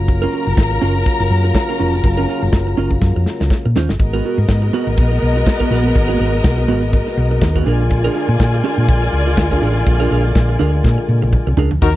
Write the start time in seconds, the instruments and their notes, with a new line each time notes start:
Already playing: fingered electric bass F#1, french horn section C#3 F#3 A#3 F4, string section A#4 A#5
0.08 muted clean electric guitar stroke, kick, closed hi-hat
0.22 clean electric guitar C#4 F4 A#4, closed hi-hat
0.32 clean electric guitar C#4 F4 A#4, closed hi-hat
0.46 fingered electric bass F#1, muted clean electric guitar stroke, closed hi-hat
0.57 fingered electric bass G#1, kick, snare
0.70 muted clean electric guitar stroke, closed hi-hat
0.81 fingered electric bass F#1, clean electric guitar C#4 F4 A#4, closed hi-hat
0.95 muted clean electric guitar stroke, closed hi-hat
1.06 muted clean electric guitar stroke, kick, closed hi-hat
1.20 fingered electric bass F#1, muted clean electric guitar stroke, closed hi-hat
1.30 fingered electric bass F#2, closed hi-hat
1.44 muted clean electric guitar stroke, closed hi-hat
1.55 muted clean electric guitar stroke, kick, snare
1.69 clean electric guitar C#4 F4 A#4, closed hi-hat
1.79 fingered electric bass F1, clean electric guitar C#4 F4 A#4, open hi-hat
1.94 muted clean electric guitar stroke, closed hi-hat
2.04 fingered electric bass F#1, muted clean electric guitar stroke, kick, closed hi-hat
2.17 clean electric guitar C#4 F4 A#4, closed hi-hat
2.28 clean electric guitar C#4 F4 A#4, closed hi-hat
2.42 fingered electric bass F#1, muted clean electric guitar stroke, closed hi-hat
2.53 fingered electric bass F#1, kick, snare
2.66 muted clean electric guitar stroke, closed hi-hat
2.77 fingered electric bass F#1, clean electric guitar C#4 F4 A#4, closed hi-hat
2.91 muted clean electric guitar stroke, kick, closed hi-hat
3.02 fingered electric bass F#2, muted clean electric guitar stroke, kick, snare
3.16 fingered electric bass F2, muted clean electric guitar stroke
3.26 snare
3.40 fingered electric bass C#2, muted clean electric guitar stroke, snare
3.50 kick, snare
3.65 fingered electric bass A#2, muted clean electric guitar stroke
3.76 fingered electric bass D#2, clean electric guitar C#4 F4 C5, snare
3.89 fingered electric bass G1, muted clean electric guitar stroke, snare
3.99 fingered electric bass G#1, french horn section B2 G#3 F#4 A#4, string section B3 A#4 D#5, muted clean electric guitar stroke, kick, closed hi-hat
4.13 clean electric guitar B3 F#4 A#4, closed hi-hat
4.24 clean electric guitar B3 F#4 A#4, closed hi-hat
4.38 fingered electric bass G#2, muted clean electric guitar stroke, closed hi-hat
4.49 fingered electric bass G#2, kick, snare
4.62 muted clean electric guitar stroke, closed hi-hat
4.73 clean electric guitar B3 F#4 A#4, closed hi-hat
4.87 fingered electric bass G#1, muted clean electric guitar stroke, closed hi-hat
4.98 fingered electric bass A#1, muted clean electric guitar stroke, kick, closed hi-hat
5.11 muted clean electric guitar stroke, closed hi-hat
5.22 fingered electric bass B1, closed hi-hat
5.36 muted clean electric guitar stroke, closed hi-hat
5.46 muted clean electric guitar stroke, kick, snare
5.60 clean electric guitar B3 F#4 A#4, kick, closed hi-hat
5.71 fingered electric bass A#1, clean electric guitar B3 F#4 A#4, open hi-hat
5.84 muted clean electric guitar stroke, closed hi-hat
5.95 fingered electric bass G#1, muted clean electric guitar stroke, kick, closed hi-hat
6.08 clean electric guitar B3 F#4 A#4, closed hi-hat
6.19 fingered electric bass G#1, clean electric guitar B3 F#4 A#4, closed hi-hat
6.33 muted clean electric guitar stroke, closed hi-hat
6.44 fingered electric bass B1, kick, snare
6.57 muted clean electric guitar stroke, closed hi-hat
6.68 fingered electric bass G#1, clean electric guitar B3 F#4 A#4, closed hi-hat
6.82 muted clean electric guitar stroke, closed hi-hat
6.93 muted clean electric guitar stroke, kick, closed hi-hat
7.06 muted clean electric guitar stroke, snare, closed hi-hat
7.16 fingered electric bass B1, closed hi-hat
7.31 muted clean electric guitar stroke, closed hi-hat
7.42 fingered electric bass D#2, muted clean electric guitar stroke, kick, snare
7.55 clean electric guitar B3 F#4 A#4, kick, closed hi-hat
7.66 fingered electric bass A#1, french horn section D3 G#3 F4, clean electric guitar D4 G#4 A#4, string section F4 D5 G#5, open hi-hat
7.81 muted clean electric guitar stroke, closed hi-hat
7.91 muted clean electric guitar stroke, kick, closed hi-hat
8.04 clean electric guitar D4 G#4 A#4, closed hi-hat
8.14 clean electric guitar D4 G#4 A#4, closed hi-hat
8.28 fingered electric bass A#2, closed hi-hat
8.40 fingered electric bass A#2, kick, snare
8.53 muted clean electric guitar stroke, closed hi-hat
8.64 clean electric guitar D4 G#4 A#4, closed hi-hat
8.77 fingered electric bass A#2, muted clean electric guitar stroke, closed hi-hat
8.88 fingered electric bass A#1, muted clean electric guitar stroke, kick, closed hi-hat
9.02 muted clean electric guitar stroke, snare, closed hi-hat
9.12 fingered electric bass C#2, closed hi-hat
9.26 muted clean electric guitar stroke, closed hi-hat
9.37 fingered electric bass D2, muted clean electric guitar stroke, kick, snare
9.51 clean electric guitar D4 G#4 A#4, kick, closed hi-hat
9.62 fingered electric bass A1, clean electric guitar D4 G#4 A#4, open hi-hat
9.76 muted clean electric guitar stroke, closed hi-hat
9.86 fingered electric bass A#1, muted clean electric guitar stroke, kick, closed hi-hat
10.00 clean electric guitar D4 G#4 A#4, closed hi-hat
10.10 fingered electric bass A#1, clean electric guitar D4 G#4 A#4, closed hi-hat
10.24 closed hi-hat
10.35 fingered electric bass A#1, kick, snare
10.49 muted clean electric guitar stroke, closed hi-hat
10.59 fingered electric bass D2, clean electric guitar D4 G#4 A#4, closed hi-hat
10.73 muted clean electric guitar stroke, closed hi-hat
10.84 fingered electric bass A#2, muted clean electric guitar stroke, kick, snare
10.98 muted clean electric guitar stroke
11.09 fingered electric bass A#2, high tom
11.22 fingered electric bass A#1, muted clean electric guitar stroke, high tom
11.33 kick, mid tom
11.47 fingered electric bass C2, muted clean electric guitar stroke
11.57 fingered electric bass C#2, clean electric guitar D4 G#4 A#4, floor tom
11.71 fingered electric bass D2, muted clean electric guitar stroke, floor tom
11.82 fingered electric bass D#2, french horn section C#3 F#3 A#3 D#4, horn section D#4 F#4 A#4, string section A#4 A#5, muted clean electric guitar stroke, kick, crash